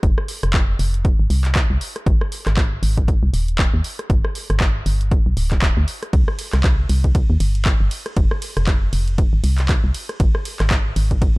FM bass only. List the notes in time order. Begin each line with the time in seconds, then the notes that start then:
0.03 F1
0.43 F1
0.79 F1
1.20 G#1
1.30 C2
1.70 C2
2.06 G#1
2.47 G#1
2.83 G#1
3.23 C2
3.33 D#1
3.74 D#2
4.10 G1
4.50 G1
4.86 G1
5.26 B1
5.37 D1
5.77 D2
6.13 C2
6.53 C2
6.90 C2
7.30 D#2
7.40 G1
7.81 G1
8.17 F1
8.57 F1
8.93 F1
9.33 G#1
9.44 C2
9.84 C2
10.20 G#1
10.60 G#1
10.96 G#1